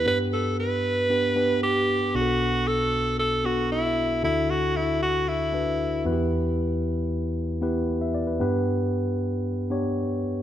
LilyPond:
<<
  \new Staff \with { instrumentName = "Alto saxophone" } { \time 4/4 \key b \minor \tempo 4 = 115 b'8 a'8 b'2 g'4 | fis'4 a'4 a'8 fis'8 e'4 | e'8 fis'8 e'8 fis'8 e'4. r8 | r1 |
r1 | }
  \new Staff \with { instrumentName = "Tine electric piano" } { \time 4/4 \key b \minor << { r1 | r1 | r1 | r2. r16 e''16 d''16 b'16~ |
b'16 r2. r8. | } \\ { <b d' g' b'>4. r8 <b d' g' b'>8 <b d' g' b'>4 r8 | <b d' fis' gis' a'>4. r4 <b d' fis' a'>4 r8 | <d' e' fis' a'>4. r4 <d' e' fis' b'>4 <b e' fis' g' b'>8~ | <b e' fis' g' b'>4 r4. <b e' g' b'>4 r8 |
<b d' g' b'>4. r4 <b d' g' cis''>4 r8 | } >> }
  \new Staff \with { instrumentName = "Tine electric piano" } { \clef bass \time 4/4 \key b \minor g,1 | <b,, b,>1 | <d, d>2.~ <d, d>8 <e, e>8~ | <e, e>2.~ <e, e>8 r8 |
g,1 | }
>>